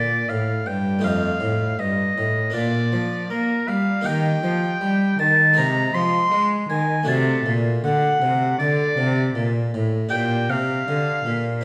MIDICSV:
0, 0, Header, 1, 4, 480
1, 0, Start_track
1, 0, Key_signature, -2, "minor"
1, 0, Tempo, 751880
1, 666, Time_signature, 4, 2, 24, 8
1, 4031, Tempo, 762389
1, 7386, End_track
2, 0, Start_track
2, 0, Title_t, "Oboe"
2, 0, Program_c, 0, 68
2, 0, Note_on_c, 0, 74, 102
2, 183, Note_on_c, 0, 77, 92
2, 192, Note_off_c, 0, 74, 0
2, 426, Note_on_c, 0, 79, 108
2, 436, Note_off_c, 0, 77, 0
2, 660, Note_off_c, 0, 79, 0
2, 664, Note_on_c, 0, 77, 115
2, 1142, Note_on_c, 0, 75, 106
2, 1152, Note_off_c, 0, 77, 0
2, 1616, Note_off_c, 0, 75, 0
2, 1619, Note_on_c, 0, 74, 107
2, 2094, Note_off_c, 0, 74, 0
2, 2106, Note_on_c, 0, 70, 103
2, 2348, Note_on_c, 0, 77, 118
2, 2358, Note_off_c, 0, 70, 0
2, 2592, Note_on_c, 0, 79, 127
2, 2602, Note_off_c, 0, 77, 0
2, 3310, Note_off_c, 0, 79, 0
2, 3314, Note_on_c, 0, 81, 126
2, 3548, Note_off_c, 0, 81, 0
2, 3558, Note_on_c, 0, 82, 122
2, 3794, Note_on_c, 0, 84, 126
2, 3804, Note_off_c, 0, 82, 0
2, 4165, Note_off_c, 0, 84, 0
2, 4272, Note_on_c, 0, 80, 109
2, 4509, Note_on_c, 0, 81, 123
2, 4519, Note_off_c, 0, 80, 0
2, 4821, Note_off_c, 0, 81, 0
2, 4994, Note_on_c, 0, 78, 127
2, 5445, Note_off_c, 0, 78, 0
2, 5459, Note_on_c, 0, 74, 114
2, 6052, Note_off_c, 0, 74, 0
2, 6416, Note_on_c, 0, 79, 127
2, 6666, Note_on_c, 0, 77, 121
2, 6675, Note_off_c, 0, 79, 0
2, 7386, Note_off_c, 0, 77, 0
2, 7386, End_track
3, 0, Start_track
3, 0, Title_t, "Harpsichord"
3, 0, Program_c, 1, 6
3, 0, Note_on_c, 1, 46, 58
3, 0, Note_on_c, 1, 58, 58
3, 0, Note_on_c, 1, 62, 54
3, 0, Note_on_c, 1, 65, 56
3, 168, Note_off_c, 1, 46, 0
3, 190, Note_on_c, 1, 45, 60
3, 405, Note_off_c, 1, 45, 0
3, 423, Note_on_c, 1, 43, 58
3, 624, Note_off_c, 1, 58, 0
3, 628, Note_off_c, 1, 62, 0
3, 632, Note_on_c, 1, 57, 59
3, 633, Note_off_c, 1, 65, 0
3, 639, Note_off_c, 1, 43, 0
3, 645, Note_on_c, 1, 63, 57
3, 651, Note_on_c, 1, 65, 56
3, 663, Note_on_c, 1, 41, 62
3, 877, Note_off_c, 1, 41, 0
3, 895, Note_on_c, 1, 45, 72
3, 1111, Note_off_c, 1, 57, 0
3, 1115, Note_off_c, 1, 45, 0
3, 1143, Note_on_c, 1, 43, 70
3, 1360, Note_off_c, 1, 43, 0
3, 1390, Note_on_c, 1, 45, 58
3, 1588, Note_off_c, 1, 63, 0
3, 1592, Note_off_c, 1, 65, 0
3, 1597, Note_on_c, 1, 58, 49
3, 1604, Note_off_c, 1, 45, 0
3, 1607, Note_on_c, 1, 62, 53
3, 1616, Note_on_c, 1, 65, 55
3, 1625, Note_on_c, 1, 46, 62
3, 1841, Note_off_c, 1, 46, 0
3, 1867, Note_on_c, 1, 53, 66
3, 2083, Note_off_c, 1, 53, 0
3, 2101, Note_off_c, 1, 58, 0
3, 2109, Note_on_c, 1, 58, 62
3, 2325, Note_off_c, 1, 58, 0
3, 2351, Note_on_c, 1, 55, 62
3, 2555, Note_off_c, 1, 62, 0
3, 2560, Note_off_c, 1, 65, 0
3, 2561, Note_on_c, 1, 58, 60
3, 2567, Note_off_c, 1, 55, 0
3, 2570, Note_on_c, 1, 63, 59
3, 2580, Note_on_c, 1, 67, 69
3, 2591, Note_on_c, 1, 51, 69
3, 2808, Note_off_c, 1, 51, 0
3, 2809, Note_off_c, 1, 58, 0
3, 2831, Note_on_c, 1, 53, 72
3, 3048, Note_off_c, 1, 53, 0
3, 3072, Note_on_c, 1, 55, 73
3, 3288, Note_off_c, 1, 55, 0
3, 3314, Note_on_c, 1, 51, 75
3, 3516, Note_off_c, 1, 63, 0
3, 3521, Note_off_c, 1, 67, 0
3, 3528, Note_off_c, 1, 51, 0
3, 3533, Note_on_c, 1, 56, 51
3, 3539, Note_on_c, 1, 63, 59
3, 3553, Note_on_c, 1, 68, 52
3, 3563, Note_on_c, 1, 48, 59
3, 3772, Note_off_c, 1, 48, 0
3, 3794, Note_on_c, 1, 53, 76
3, 4008, Note_off_c, 1, 53, 0
3, 4023, Note_off_c, 1, 56, 0
3, 4030, Note_on_c, 1, 56, 68
3, 4246, Note_off_c, 1, 56, 0
3, 4273, Note_on_c, 1, 51, 69
3, 4479, Note_off_c, 1, 63, 0
3, 4483, Note_on_c, 1, 57, 72
3, 4486, Note_off_c, 1, 68, 0
3, 4488, Note_off_c, 1, 51, 0
3, 4493, Note_on_c, 1, 62, 66
3, 4501, Note_on_c, 1, 66, 67
3, 4513, Note_on_c, 1, 48, 73
3, 4728, Note_off_c, 1, 48, 0
3, 4752, Note_on_c, 1, 46, 76
3, 4967, Note_off_c, 1, 46, 0
3, 4991, Note_on_c, 1, 50, 71
3, 5206, Note_off_c, 1, 50, 0
3, 5230, Note_on_c, 1, 48, 69
3, 5445, Note_off_c, 1, 48, 0
3, 5471, Note_on_c, 1, 50, 63
3, 5686, Note_off_c, 1, 50, 0
3, 5705, Note_on_c, 1, 48, 74
3, 5923, Note_off_c, 1, 48, 0
3, 5945, Note_on_c, 1, 46, 66
3, 6161, Note_off_c, 1, 46, 0
3, 6190, Note_on_c, 1, 45, 75
3, 6386, Note_off_c, 1, 57, 0
3, 6391, Note_off_c, 1, 62, 0
3, 6395, Note_off_c, 1, 66, 0
3, 6402, Note_off_c, 1, 45, 0
3, 6407, Note_on_c, 1, 62, 71
3, 6414, Note_on_c, 1, 67, 67
3, 6426, Note_on_c, 1, 46, 72
3, 6640, Note_off_c, 1, 46, 0
3, 6664, Note_on_c, 1, 48, 82
3, 6881, Note_off_c, 1, 48, 0
3, 6906, Note_on_c, 1, 50, 71
3, 7124, Note_off_c, 1, 50, 0
3, 7146, Note_on_c, 1, 46, 72
3, 7356, Note_off_c, 1, 62, 0
3, 7360, Note_off_c, 1, 67, 0
3, 7366, Note_off_c, 1, 46, 0
3, 7366, Note_on_c, 1, 60, 54
3, 7386, Note_off_c, 1, 60, 0
3, 7386, End_track
4, 0, Start_track
4, 0, Title_t, "Cello"
4, 0, Program_c, 2, 42
4, 0, Note_on_c, 2, 46, 77
4, 187, Note_off_c, 2, 46, 0
4, 192, Note_on_c, 2, 45, 70
4, 425, Note_off_c, 2, 45, 0
4, 429, Note_on_c, 2, 43, 75
4, 662, Note_on_c, 2, 41, 83
4, 672, Note_off_c, 2, 43, 0
4, 901, Note_off_c, 2, 41, 0
4, 906, Note_on_c, 2, 45, 70
4, 1139, Note_off_c, 2, 45, 0
4, 1147, Note_on_c, 2, 43, 80
4, 1381, Note_off_c, 2, 43, 0
4, 1388, Note_on_c, 2, 45, 74
4, 1622, Note_off_c, 2, 45, 0
4, 1628, Note_on_c, 2, 46, 88
4, 1871, Note_on_c, 2, 53, 79
4, 1881, Note_off_c, 2, 46, 0
4, 2109, Note_off_c, 2, 53, 0
4, 2116, Note_on_c, 2, 58, 82
4, 2348, Note_off_c, 2, 58, 0
4, 2355, Note_on_c, 2, 55, 69
4, 2588, Note_off_c, 2, 55, 0
4, 2597, Note_on_c, 2, 51, 95
4, 2830, Note_off_c, 2, 51, 0
4, 2833, Note_on_c, 2, 53, 84
4, 3068, Note_off_c, 2, 53, 0
4, 3078, Note_on_c, 2, 55, 88
4, 3311, Note_off_c, 2, 55, 0
4, 3314, Note_on_c, 2, 51, 84
4, 3561, Note_on_c, 2, 48, 96
4, 3571, Note_off_c, 2, 51, 0
4, 3791, Note_off_c, 2, 48, 0
4, 3795, Note_on_c, 2, 53, 85
4, 4027, Note_off_c, 2, 53, 0
4, 4034, Note_on_c, 2, 56, 84
4, 4267, Note_off_c, 2, 56, 0
4, 4270, Note_on_c, 2, 51, 78
4, 4506, Note_off_c, 2, 51, 0
4, 4516, Note_on_c, 2, 48, 105
4, 4747, Note_off_c, 2, 48, 0
4, 4750, Note_on_c, 2, 46, 89
4, 4985, Note_off_c, 2, 46, 0
4, 4994, Note_on_c, 2, 50, 84
4, 5225, Note_off_c, 2, 50, 0
4, 5228, Note_on_c, 2, 48, 85
4, 5463, Note_off_c, 2, 48, 0
4, 5472, Note_on_c, 2, 50, 97
4, 5706, Note_off_c, 2, 50, 0
4, 5713, Note_on_c, 2, 48, 94
4, 5946, Note_off_c, 2, 48, 0
4, 5950, Note_on_c, 2, 46, 88
4, 6183, Note_off_c, 2, 46, 0
4, 6195, Note_on_c, 2, 45, 71
4, 6421, Note_off_c, 2, 45, 0
4, 6425, Note_on_c, 2, 46, 91
4, 6662, Note_on_c, 2, 48, 82
4, 6671, Note_off_c, 2, 46, 0
4, 6900, Note_off_c, 2, 48, 0
4, 6904, Note_on_c, 2, 50, 85
4, 7138, Note_off_c, 2, 50, 0
4, 7142, Note_on_c, 2, 46, 81
4, 7386, Note_off_c, 2, 46, 0
4, 7386, End_track
0, 0, End_of_file